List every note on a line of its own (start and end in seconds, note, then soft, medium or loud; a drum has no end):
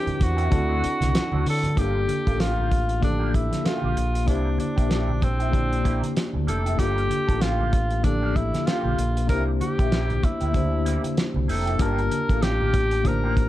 0.00 0.50 C4 medium
0.00 0.51 D4 medium
0.00 0.52 E4 medium
0.00 0.25 G4 loud
0.00 0.55 G4 medium
0.00 0.54 A#4 medium
0.00 0.47 C5 medium
0.06 muted clean electric guitar stroke soft
0.06 muted fingered electric bass stroke soft
0.06 closed hi-hat soft
0.06 high conga soft
0.06 low conga medium
0.20 0.48 E2 medium
0.20 1.48 F#4 medium
0.20 kick medium
0.20 closed hi-hat medium
0.20 low conga medium
0.37 0.50 A#3 medium
0.37 0.50 E4 medium
0.37 0.50 G4 medium
0.37 closed hi-hat soft
0.50 0.79 D2 loud
0.50 1.68 C4 medium
0.50 1.68 D4 medium
0.50 1.69 E4 medium
0.50 1.69 F#4 medium
0.50 1.70 A4 medium
0.50 muted clean electric guitar stroke soft
0.50 kick loud
0.50 closed hi-hat medium
0.50 high conga medium
0.68 0.81 A3 medium
0.68 0.82 C4 medium
0.68 0.82 F#4 medium
0.82 muted clean electric guitar stroke soft
0.82 muted fingered electric bass stroke soft
0.82 closed hi-hat medium
0.82 muted conga soft
1.00 1.13 C2 medium
1.00 muted clean electric guitar stroke soft
1.00 snare soft
1.00 closed hi-hat medium
1.00 high conga medium
1.13 muted clean electric guitar stroke soft
1.13 muted fingered electric bass stroke soft
1.13 snare loud
1.13 closed hi-hat medium
1.32 1.45 D2 medium
1.32 1.43 A3 medium
1.32 1.44 C4 medium
1.32 1.44 F#4 medium
1.32 high conga medium
1.45 1.73 D3 loud
1.45 muted clean electric guitar stroke soft
1.45 open hi-hat medium
1.50 1.80 A4 medium
1.63 muted clean electric guitar stroke soft
1.63 closed hi-hat medium
1.63 low conga medium
1.75 2.04 G1 loud
1.75 2.93 A#3 medium
1.75 1.96 A#3 medium
1.75 2.94 D4 medium
1.75 2.94 F4 medium
1.75 1.97 F4 medium
1.75 1.97 G4 medium
1.75 2.95 G4 medium
1.75 2.43 G4 medium
1.75 2.95 A4 medium
1.75 kick medium
1.75 closed hi-hat medium
2.08 muted clean electric guitar stroke soft
2.08 closed hi-hat medium
2.08 muted conga soft
2.08 high conga medium
2.27 3.49 A1 medium
2.27 2.38 A#3 soft
2.27 2.38 F4 soft
2.27 2.38 A4 soft
2.27 kick medium
2.27 closed hi-hat soft
2.39 2.69 A#3 medium
2.39 2.70 F4 medium
2.39 3.03 F4 medium
2.39 2.70 G4 medium
2.39 snare loud
2.39 closed hi-hat medium
2.39 muted conga soft
2.59 high conga soft
2.59 low conga medium
2.71 muted clean electric guitar stroke soft
2.71 kick medium
2.71 closed hi-hat medium
2.71 muted conga soft
2.71 low conga medium
2.88 muted clean electric guitar stroke soft
2.88 closed hi-hat soft
3.01 4.19 F3 medium
3.01 4.19 A#3 medium
3.01 4.19 D4 medium
3.01 3.37 D4 medium
3.01 4.20 G4 medium
3.01 4.20 A4 medium
3.01 muted clean electric guitar stroke soft
3.01 kick medium
3.01 closed hi-hat medium
3.01 high conga soft
3.19 3.32 A#3 medium
3.19 3.32 F4 medium
3.19 3.33 G4 medium
3.33 3.68 E4 medium
3.33 muted clean electric guitar stroke soft
3.33 kick medium
3.33 closed hi-hat medium
3.33 muted conga soft
3.51 muted clean electric guitar stroke soft
3.51 snare soft
3.51 closed hi-hat medium
3.51 high conga medium
3.64 3.76 A3 medium
3.64 3.77 E4 medium
3.64 4.30 F4 medium
3.64 3.77 F#4 medium
3.64 snare loud
3.64 closed hi-hat medium
3.76 3.94 A#3 medium
3.76 3.94 F4 medium
3.76 3.95 G4 medium
3.82 3.95 A#1 medium
3.82 high conga medium
3.96 4.28 A#1 medium
3.96 muted clean electric guitar stroke soft
3.96 closed hi-hat medium
3.96 muted conga soft
4.14 muted clean electric guitar stroke soft
4.14 closed hi-hat medium
4.25 4.55 C2 loud
4.25 5.44 A#3 medium
4.25 4.47 A#3 medium
4.25 5.44 D4 medium
4.25 4.59 D4 medium
4.25 4.47 E4 medium
4.25 5.45 E4 medium
4.25 4.47 G4 medium
4.25 5.45 G4 medium
4.25 5.46 C5 medium
4.25 kick medium
4.25 closed hi-hat medium
4.25 muted conga soft
4.58 5.25 D4 medium
4.58 muted clean electric guitar stroke soft
4.58 closed hi-hat medium
4.58 muted conga soft
4.58 high conga medium
4.76 5.99 A#1 medium
4.76 4.88 A#3 soft
4.76 4.88 E4 soft
4.76 4.88 G4 soft
4.76 kick medium
4.76 closed hi-hat medium
4.89 5.09 A#3 medium
4.89 5.09 E4 medium
4.89 5.09 G4 medium
4.89 snare loud
4.89 closed hi-hat medium
5.09 high conga soft
5.09 low conga medium
5.21 6.22 C4 medium
5.21 muted clean electric guitar stroke soft
5.21 kick loud
5.21 closed hi-hat medium
5.21 muted conga soft
5.21 low conga medium
5.40 5.52 A#3 soft
5.40 5.51 E4 soft
5.40 5.51 G4 soft
5.40 closed hi-hat soft
5.51 6.69 A#3 medium
5.51 6.69 D4 medium
5.51 6.70 E4 medium
5.51 6.70 G4 medium
5.51 6.71 D5 medium
5.51 muted clean electric guitar stroke soft
5.51 kick medium
5.51 closed hi-hat medium
5.51 high conga medium
5.71 muted clean electric guitar stroke soft
5.71 closed hi-hat soft
5.84 6.04 A#3 medium
5.84 6.02 E4 medium
5.84 6.01 G4 medium
5.84 kick medium
5.84 closed hi-hat medium
6.03 muted clean electric guitar stroke soft
6.03 closed hi-hat medium
6.03 high conga medium
6.16 muted clean electric guitar stroke soft
6.16 snare medium
6.16 closed hi-hat medium
6.33 6.46 D2 medium
6.33 muted clean electric guitar stroke soft
6.33 high conga medium
6.47 6.74 F1 loud
6.47 6.62 A#3 medium
6.47 6.63 E4 medium
6.47 6.63 G4 medium
6.47 6.81 A4 medium
6.47 closed hi-hat medium
6.47 muted conga soft
6.66 6.77 A#3 soft
6.66 6.77 E4 soft
6.66 6.77 G4 medium
6.66 closed hi-hat medium
6.77 7.06 G1 medium
6.77 7.95 A#3 medium
6.77 6.98 A#3 medium
6.77 7.95 D4 medium
6.77 7.96 F4 medium
6.77 6.98 F4 medium
6.77 7.43 G4 loud
6.77 7.96 G4 medium
6.77 6.98 G4 medium
6.77 7.96 A4 medium
6.77 kick medium
6.77 closed hi-hat medium
6.77 muted conga soft
6.98 closed hi-hat soft
7.09 muted clean electric guitar stroke soft
7.09 closed hi-hat medium
7.09 muted conga soft
7.09 high conga medium
7.27 8.50 A1 medium
7.27 7.39 A#3 soft
7.27 7.39 F4 soft
7.27 7.39 A4 medium
7.27 kick medium
7.27 closed hi-hat medium
7.41 7.70 A#3 medium
7.41 7.71 F4 medium
7.41 8.06 F4 medium
7.41 7.71 G4 medium
7.41 snare loud
7.41 closed hi-hat medium
7.60 high conga soft
7.60 low conga medium
7.73 muted clean electric guitar stroke soft
7.73 kick medium
7.73 closed hi-hat medium
7.73 low conga medium
7.90 muted clean electric guitar stroke soft
7.90 closed hi-hat soft
8.03 9.21 F3 medium
8.03 9.20 A#3 medium
8.03 9.21 D4 medium
8.03 8.38 D4 medium
8.03 9.22 G4 medium
8.03 9.22 A4 medium
8.03 muted clean electric guitar stroke soft
8.03 kick medium
8.03 closed hi-hat medium
8.03 muted conga soft
8.03 high conga medium
8.23 8.35 A#3 medium
8.23 8.35 F4 medium
8.23 8.35 G4 medium
8.36 8.68 E4 medium
8.36 kick medium
8.36 closed hi-hat medium
8.53 muted clean electric guitar stroke soft
8.53 snare soft
8.53 closed hi-hat medium
8.53 high conga medium
8.67 8.96 A#3 medium
8.67 9.29 F4 medium
8.67 8.96 F4 medium
8.67 8.97 G4 medium
8.67 snare medium
8.67 closed hi-hat medium
8.84 8.96 A#1 medium
8.84 high conga medium
8.98 9.29 A#1 medium
8.98 muted clean electric guitar stroke soft
8.98 closed hi-hat medium
9.16 muted clean electric guitar stroke soft
9.16 closed hi-hat medium
9.27 9.56 C2 loud
9.27 10.45 A#3 medium
9.27 9.48 A#3 medium
9.27 10.45 D4 medium
9.27 10.46 E4 medium
9.27 9.49 E4 medium
9.27 10.46 G4 medium
9.27 9.49 G4 medium
9.27 9.43 A#4 loud
9.27 10.47 C5 medium
9.27 kick loud
9.27 closed hi-hat medium
9.31 muted conga soft
9.60 10.26 G4 medium
9.60 muted clean electric guitar stroke soft
9.60 closed hi-hat medium
9.60 high conga medium
9.79 10.17 A#1 medium
9.79 9.90 A#3 soft
9.79 9.90 E4 soft
9.79 9.90 G4 medium
9.79 kick medium
9.79 closed hi-hat soft
9.91 10.11 A#3 medium
9.91 10.11 E4 medium
9.91 10.11 G4 medium
9.91 snare loud
9.91 closed hi-hat medium
10.10 closed hi-hat soft
10.10 high conga soft
10.10 low conga medium
10.22 11.23 E4 loud
10.22 muted clean electric guitar stroke soft
10.22 muted fingered electric bass stroke soft
10.22 kick medium
10.22 closed hi-hat medium
10.22 muted conga soft
10.22 low conga medium
10.41 10.95 D2 medium
10.41 10.53 A#3 soft
10.41 10.52 E4 soft
10.41 10.52 G4 medium
10.41 closed hi-hat soft
10.52 11.70 A#3 medium
10.52 11.71 D4 medium
10.52 11.71 E4 medium
10.52 11.72 G4 medium
10.52 11.72 C5 medium
10.52 muted clean electric guitar stroke soft
10.52 kick medium
10.52 closed hi-hat medium
10.52 muted conga soft
10.52 high conga medium
10.72 muted clean electric guitar stroke soft
10.86 11.05 A#3 medium
10.86 11.04 E4 medium
10.86 11.03 G4 medium
10.86 closed hi-hat medium
10.86 muted conga soft
11.04 muted clean electric guitar stroke soft
11.04 closed hi-hat medium
11.04 high conga medium
11.17 muted clean electric guitar stroke soft
11.17 snare loud
11.17 closed hi-hat medium
11.17 muted conga soft
11.34 11.47 C2 medium
11.34 muted clean electric guitar stroke soft
11.34 high conga medium
11.48 11.75 F1 medium
11.48 11.64 A#3 soft
11.48 11.64 E4 medium
11.48 11.64 G4 medium
11.48 11.82 A4 medium
11.48 open hi-hat medium
11.48 muted conga soft
11.66 11.78 A#3 soft
11.66 11.78 E4 soft
11.66 11.77 G4 medium
11.66 closed hi-hat medium
11.77 12.07 G1 medium
11.77 12.96 A#3 medium
11.77 11.99 A#3 medium
11.77 12.96 D4 medium
11.77 12.96 F4 medium
11.77 11.99 F4 medium
11.77 12.97 G4 medium
11.77 11.99 G4 medium
11.77 12.44 A#4 loud
11.77 12.97 A5 medium
11.77 kick medium
11.77 closed hi-hat medium
11.77 muted conga soft
11.98 closed hi-hat soft
12.11 muted clean electric guitar stroke soft
12.11 closed hi-hat medium
12.11 high conga medium
12.29 13.49 A1 medium
12.29 12.41 A#3 soft
12.29 12.41 F4 soft
12.29 12.40 A4 medium
12.29 kick medium
12.29 closed hi-hat medium
12.42 12.72 A#3 medium
12.42 12.72 F4 medium
12.42 13.09 G4 loud
12.42 12.73 G4 medium
12.42 snare medium
12.42 closed hi-hat medium
12.42 muted conga soft
12.61 high conga soft
12.61 low conga medium
12.73 muted clean electric guitar stroke soft
12.73 kick loud
12.73 closed hi-hat medium
12.73 low conga medium
12.91 muted clean electric guitar stroke soft
12.91 closed hi-hat soft
13.03 13.49 A#3 medium
13.03 13.49 D4 medium
13.03 13.49 F4 medium
13.03 13.49 G4 medium
13.03 13.49 C5 medium
13.03 muted clean electric guitar stroke soft
13.03 kick medium
13.03 closed hi-hat medium
13.03 muted conga soft
13.03 high conga medium
13.07 13.49 A#4 loud
13.24 13.35 A#3 medium
13.24 13.36 F4 medium
13.24 13.36 G4 medium
13.36 muted clean electric guitar stroke soft
13.36 kick medium
13.36 closed hi-hat medium